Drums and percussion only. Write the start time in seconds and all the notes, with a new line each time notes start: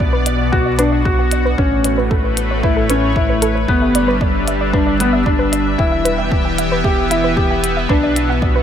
0.00 kick
0.26 closed hi-hat
0.53 kick
0.79 closed hi-hat
1.05 kick
1.31 closed hi-hat
1.58 kick
1.84 closed hi-hat
2.11 kick
2.37 closed hi-hat
2.63 kick
2.90 closed hi-hat
3.16 kick
3.42 closed hi-hat
3.68 kick
3.95 closed hi-hat
4.21 kick
4.48 closed hi-hat
4.73 kick
5.00 closed hi-hat
5.26 kick
5.53 closed hi-hat
5.79 kick
6.05 closed hi-hat
6.32 kick
6.58 closed hi-hat
6.84 kick
7.11 closed hi-hat
7.37 kick
7.64 closed hi-hat
7.90 kick
8.16 closed hi-hat
8.42 kick